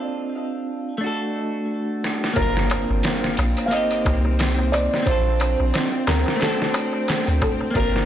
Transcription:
0.00 0.93 C4 medium
0.00 0.95 D4 medium
0.00 0.96 F4 medium
0.00 0.97 A4 medium
0.98 2.29 A3 medium
0.98 2.30 D4 medium
1.04 2.32 F#4 medium
1.04 2.33 A4 medium
2.04 snare medium
2.24 snare medium
2.34 2.86 G1 loud
2.34 3.64 A#3 medium
2.34 8.05 C4 medium
2.34 3.65 D4 medium
2.34 3.33 A#4 loud
2.34 kick loud
2.34 closed hi-hat medium
2.34 impact medium
2.34 darbuka tek soft
2.39 3.67 F4 medium
2.39 3.68 A#4 medium
2.57 snare medium
2.70 closed hi-hat medium
2.70 darbuka tek loud
2.90 3.02 G1 medium
2.90 darbuka tek soft
3.03 snare loud
3.03 closed hi-hat medium
3.03 darbuka tek soft
3.24 snare soft
3.37 3.55 A#1 loud
3.37 closed hi-hat medium
3.37 darbuka tek medium
3.57 closed hi-hat soft
3.57 darbuka tek soft
3.66 4.99 A#3 medium
3.66 3.72 F5 medium
3.70 5.00 C4 medium
3.70 5.01 D#4 medium
3.70 4.35 D#5 loud
3.70 closed hi-hat medium
3.70 darbuka tek soft
3.76 5.03 G4 medium
3.91 closed hi-hat soft
3.91 darbuka tek soft
4.05 4.88 C2 medium
4.05 kick loud
4.05 closed hi-hat medium
4.05 darbuka tek medium
4.25 darbuka tek soft
4.39 snare loud
4.39 open hi-hat medium
4.39 darbuka tek medium
4.59 darbuka tek soft
4.72 5.04 D5 medium
4.72 closed hi-hat medium
4.72 darbuka tek medium
4.93 snare soft
4.93 darbuka tek soft
5.03 6.33 C4 medium
5.03 6.35 D4 medium
5.03 6.10 C5 loud
5.03 kick loud
5.07 5.56 A#1 loud
5.07 6.36 F4 medium
5.07 closed hi-hat medium
5.07 darbuka tek soft
5.11 6.37 A4 medium
5.40 closed hi-hat medium
5.40 darbuka tek medium
5.60 5.72 A#1 medium
5.60 darbuka tek soft
5.74 snare loud
5.74 closed hi-hat medium
5.74 darbuka tek medium
6.07 6.24 D2 medium
6.07 6.42 A#4 medium
6.07 snare loud
6.07 closed hi-hat medium
6.07 darbuka tek medium
6.26 snare medium
6.26 darbuka tek soft
6.36 7.68 A3 medium
6.36 7.69 D4 medium
6.36 darbuka tek soft
6.41 7.70 F#4 medium
6.41 7.41 A4 medium
6.41 snare loud
6.41 closed hi-hat medium
6.45 7.72 A4 medium
6.60 snare medium
6.60 darbuka tek soft
6.74 closed hi-hat medium
6.74 darbuka tek loud
6.93 darbuka tek soft
7.08 snare loud
7.08 closed hi-hat medium
7.08 darbuka tek medium
7.27 7.40 D2 medium
7.27 closed hi-hat soft
7.27 darbuka tek soft
7.42 7.50 A4 medium
7.42 kick loud
7.42 closed hi-hat medium
7.42 darbuka tek medium
7.61 darbuka tek soft
7.71 8.05 A#3 medium
7.71 8.05 D4 medium
7.75 8.05 G1 loud
7.75 8.05 F4 medium
7.75 8.05 A#4 loud
7.75 kick loud
7.75 closed hi-hat medium
7.75 darbuka tek soft
7.80 8.05 A#4 medium
7.96 snare medium

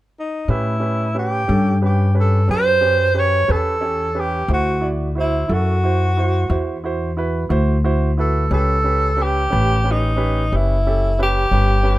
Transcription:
0.20 0.52 D#4 medium
0.48 1.46 A2 medium
0.48 0.74 C#4 medium
0.48 1.16 E4 medium
0.48 0.74 G4 soft
0.48 0.74 B4 medium
0.80 1.06 C#4 medium
0.80 1.06 G4 soft
0.80 1.07 B4 soft
1.14 1.40 C#4 medium
1.14 1.40 G4 soft
1.14 1.41 B4 medium
1.19 1.80 G4 medium
1.48 2.46 G2 medium
1.48 1.74 C#4 soft
1.48 1.74 G4 medium
1.48 1.74 A4 medium
1.82 2.07 C#4 soft
1.82 2.07 G4 soft
1.82 2.15 G4 medium
1.82 2.07 B4 medium
2.14 2.40 C#4 medium
2.14 2.40 G4 soft
2.14 2.41 B4 medium
2.20 2.49 A4 medium
2.48 3.46 F#2 medium
2.48 2.73 C#4 soft
2.48 2.74 G4 soft
2.48 2.74 B4 soft
2.48 3.21 C5 loud
2.81 3.07 C#4 soft
2.81 3.07 G4 soft
2.81 3.07 B4 medium
3.14 3.40 C#4 medium
3.14 3.41 G4 medium
3.14 3.41 B4 soft
3.19 3.53 C#5 medium
3.48 4.46 E2 medium
3.48 3.74 C#4 medium
3.48 3.74 G4 soft
3.48 4.22 A4 loud
3.48 3.74 B4 medium
3.81 4.07 C#4 medium
3.81 4.07 G4 soft
3.81 4.07 C#5 medium
4.15 4.41 C#4 medium
4.15 4.41 G4 soft
4.15 4.41 B4 medium
4.20 4.52 G4 medium
4.48 5.46 D2 medium
4.48 4.74 E4 soft
4.48 4.74 F#4 medium
4.48 4.75 C5 medium
4.53 4.89 F#4 medium
4.81 5.07 E4 medium
4.81 5.07 F#4 soft
4.81 5.08 D5 soft
5.15 5.41 E4 soft
5.15 5.42 F#4 soft
5.15 5.42 C5 medium
5.20 5.55 E4 medium
5.48 6.47 F#2 medium
5.48 5.74 E4 medium
5.48 5.75 F#4 soft
5.48 5.75 A4 medium
5.53 6.85 F#4 medium
5.84 6.09 E4 soft
5.84 6.09 F#4 soft
5.84 6.09 C5 medium
6.17 6.42 E4 medium
6.17 6.43 F#4 soft
6.17 6.43 C5 medium
6.49 7.47 E2 medium
6.49 6.75 E4 soft
6.49 6.75 F#4 medium
6.49 6.76 C5 medium
6.84 7.09 E4 medium
6.84 7.09 F#4 medium
6.84 7.10 C5 medium
7.17 7.42 E4 medium
7.17 7.42 F#4 medium
7.17 7.43 B4 medium
7.49 8.48 D2 medium
7.49 7.75 E4 medium
7.49 7.75 F#4 medium
7.49 7.76 C5 medium
7.84 8.09 E4 medium
7.84 8.09 F#4 medium
7.84 8.10 C5 medium
8.18 8.42 E4 medium
8.18 8.43 F#4 soft
8.18 8.50 A4 medium
8.18 8.43 B4 medium
8.51 9.48 C#2 medium
8.51 8.76 C#4 medium
8.51 8.76 G4 medium
8.51 9.24 A4 medium
8.51 8.77 B4 medium
8.84 9.09 C#4 soft
8.84 9.09 G4 soft
8.84 9.10 B4 medium
9.17 9.42 C#4 soft
9.17 9.42 G4 soft
9.17 9.43 B4 medium
9.22 9.93 G4 loud
9.50 10.49 A1 medium
9.50 9.76 C#4 medium
9.50 9.76 G4 soft
9.50 9.76 B4 medium
9.84 10.09 C#4 medium
9.84 10.10 G4 soft
9.84 10.10 B4 medium
9.91 10.58 D#4 medium
10.16 10.42 C#4 medium
10.16 10.42 G4 medium
10.16 10.43 B4 medium
10.52 11.49 F#1 medium
10.52 10.77 C#4 soft
10.52 10.77 G4 soft
10.52 10.77 B4 soft
10.57 11.21 E4 medium
10.86 11.11 C#4 soft
10.86 11.11 G4 soft
10.86 11.11 A4 medium
11.19 11.43 C#4 medium
11.19 11.44 G4 soft
11.19 11.44 B4 medium
11.23 11.99 G4 loud
11.51 11.99 G1 medium
11.51 11.77 C#4 medium
11.51 11.77 G4 soft
11.51 11.77 B4 medium
11.83 11.99 C#4 medium
11.83 11.99 G4 soft
11.83 11.99 B4 medium

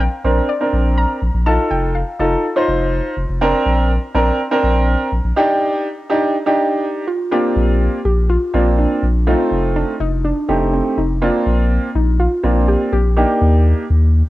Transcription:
0.00 0.25 G5 loud
0.24 0.41 A#1 medium
0.24 0.49 C4 medium
0.24 0.49 D4 medium
0.24 0.49 A#4 medium
0.24 0.50 C5 medium
0.49 0.99 D5 medium
0.61 1.18 C4 medium
0.61 1.18 D4 medium
0.61 1.18 A#4 medium
0.73 1.05 A#1 loud
0.98 1.48 A#5 loud
1.22 1.30 A#1 medium
1.34 1.58 A#1 loud
1.46 1.95 D#4 medium
1.46 1.95 F4 medium
1.46 1.95 A4 medium
1.46 1.69 A5 loud
1.71 2.03 F1 medium
1.71 1.93 G5 medium
1.95 2.40 F5 medium
2.19 2.36 F1 medium
2.19 2.44 D#4 medium
2.19 2.44 F4 medium
2.19 2.44 A4 medium
2.56 3.13 D#4 medium
2.56 3.13 F4 medium
2.56 3.13 C5 loud
2.68 3.01 F1 loud
3.17 3.25 F1 loud
3.29 3.53 F1 loud
3.41 3.90 C4 loud
3.41 3.90 D4 medium
3.41 3.90 A#4 loud
3.66 3.98 A#1 medium
4.14 4.31 A#1 medium
4.14 4.39 C4 medium
4.14 4.39 D4 medium
4.14 4.39 A#4 loud
4.51 5.08 C4 medium
4.51 5.08 D4 medium
4.51 5.08 A#4 loud
4.63 4.96 A#1 loud
5.12 5.20 A#1 medium
5.24 5.32 A#1 loud
5.36 5.85 D4 loud
5.36 5.85 D#4 medium
5.36 5.86 G4 loud
6.10 6.34 D4 medium
6.10 6.34 D#4 medium
6.10 6.34 G4 loud
6.46 7.03 D4 medium
6.46 7.03 D#4 medium
6.46 7.03 G4 loud
7.07 7.32 F4 loud
7.31 7.97 A#3 medium
7.31 7.97 C4 medium
7.31 7.97 D4 medium
7.31 7.97 F4 medium
7.31 8.04 G4 loud
7.56 7.88 A#1 loud
8.05 8.37 A#1 loud
8.05 8.30 G4 loud
8.29 8.80 F4 loud
8.54 8.86 A#1 medium
8.54 9.02 A#3 medium
8.54 9.03 C4 medium
8.54 9.03 D4 medium
8.54 9.03 F4 medium
8.78 9.24 D4 medium
9.03 9.35 A#1 medium
9.27 9.92 A3 medium
9.27 9.92 C4 medium
9.27 9.77 C4 loud
9.27 9.92 D#4 medium
9.27 9.92 F4 medium
9.51 9.84 F1 medium
9.76 10.01 D4 loud
10.00 10.32 F1 loud
10.00 10.25 D#4 medium
10.25 10.48 D4 loud
10.48 10.81 F1 medium
10.48 10.97 A3 medium
10.48 10.98 C4 medium
10.48 10.74 D4 medium
10.48 10.98 D#4 medium
10.48 10.98 G4 medium
10.73 10.98 C4 medium
10.97 11.30 F1 medium
10.97 11.23 D#4 medium
11.22 11.87 A#3 medium
11.22 11.87 C4 medium
11.22 11.97 C4 medium
11.22 11.87 D4 medium
11.22 11.87 F4 medium
11.46 11.79 A#1 loud
11.95 12.27 A#1 loud
11.95 12.18 D#4 medium
12.20 12.43 F4 loud
12.43 12.76 A#1 medium
12.43 12.93 A#3 medium
12.43 12.93 C4 medium
12.43 12.93 D4 medium
12.43 12.69 F4 medium
12.43 12.93 F4 medium
12.68 12.79 G4 loud
12.93 13.25 A#1 medium
12.93 13.62 G4 medium
13.17 13.82 A#3 medium
13.17 13.82 D4 medium
13.17 13.82 D#4 medium
13.17 13.82 G4 medium
13.41 13.74 D#2 medium
13.90 14.22 D#2 loud

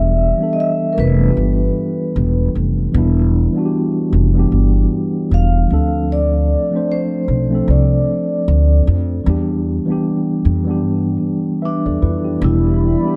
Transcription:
0.00 0.30 E1 loud
0.00 0.21 E3 medium
0.00 0.21 G3 medium
0.00 0.22 B3 medium
0.00 0.23 D4 medium
0.00 0.24 G4 medium
0.00 0.55 E5 loud
0.38 0.94 E3 medium
0.38 0.94 G3 medium
0.38 0.95 B3 medium
0.42 0.96 D4 medium
0.42 0.97 A4 medium
0.53 0.58 D#5 medium
0.60 0.93 E5 medium
0.93 0.97 A#4 medium
0.98 1.30 F1 loud
0.98 2.52 B4 medium
1.18 2.34 E3 medium
1.18 2.34 G3 medium
1.18 2.35 B3 medium
1.22 2.36 D4 medium
1.22 1.27 F4 medium
1.30 2.40 G4 medium
1.37 1.69 G1 medium
2.16 2.48 E1 medium
2.55 2.88 F1 medium
2.92 3.46 E1 loud
2.92 3.37 E3 medium
2.92 3.38 G3 medium
2.92 3.38 B3 medium
2.97 3.39 D4 medium
2.97 3.40 E4 medium
3.53 4.09 E3 medium
3.53 4.10 G3 medium
3.53 4.11 B3 medium
3.58 4.12 D4 medium
3.58 3.63 F#4 medium
3.66 4.16 G4 medium
4.13 4.45 F1 medium
4.33 5.49 E3 medium
4.33 5.50 G3 medium
4.33 5.51 B3 medium
4.38 5.52 D4 medium
4.38 5.52 G4 medium
4.52 4.84 G1 medium
5.31 5.64 E1 medium
5.31 6.07 F5 loud
5.68 6.54 D2 medium
5.68 6.48 F3 medium
5.68 6.49 A3 medium
5.68 6.49 C4 medium
5.72 6.50 D4 medium
5.72 6.51 A4 medium
6.12 6.92 D5 medium
6.70 7.26 F3 medium
6.70 7.27 A3 medium
6.70 7.27 C4 medium
6.75 7.28 D4 medium
6.75 7.29 C5 medium
6.92 7.71 C5 medium
7.28 7.61 B1 medium
7.49 8.65 F3 medium
7.49 8.66 A3 medium
7.49 8.67 C4 medium
7.54 8.67 D4 medium
7.54 8.68 A4 medium
7.68 8.00 C2 medium
7.68 8.83 D5 medium
8.48 8.80 D2 loud
8.87 9.19 F2 medium
9.24 9.78 E2 loud
9.24 9.69 E3 medium
9.24 9.69 G3 medium
9.24 9.70 B3 medium
9.28 9.71 D4 medium
9.28 9.72 G4 medium
9.86 10.42 E3 medium
9.86 10.42 G3 medium
9.86 10.43 B3 medium
9.90 10.44 D4 medium
9.90 10.45 G4 medium
10.45 10.84 F2 medium
10.65 11.81 E3 medium
10.65 11.82 G3 medium
10.65 11.82 B3 medium
10.69 11.63 D4 medium
10.69 11.64 G4 medium
10.84 11.16 G2 medium
11.62 12.45 D4 medium
11.62 11.84 B4 soft
11.62 11.84 E5 medium
11.86 11.99 E2 medium
11.86 12.01 A4 medium
11.86 12.01 D5 medium
12.02 12.35 F2 medium
12.02 12.24 E4 medium
12.02 12.24 B4 medium
12.24 12.41 D4 soft
12.24 12.43 G4 medium
12.38 12.93 E1 loud
12.38 12.84 E3 medium
12.38 12.84 G3 medium
12.38 12.85 B3 medium
12.38 13.16 G4 medium
12.38 13.16 D5 medium
12.38 13.16 E5 medium
12.38 13.16 B5 medium
12.42 12.86 D4 medium
12.42 13.16 E4 loud
12.42 12.87 G4 medium
13.01 13.16 E3 medium
13.01 13.16 G3 medium
13.01 13.16 B3 medium
13.06 13.16 D4 medium
13.06 13.16 G4 medium

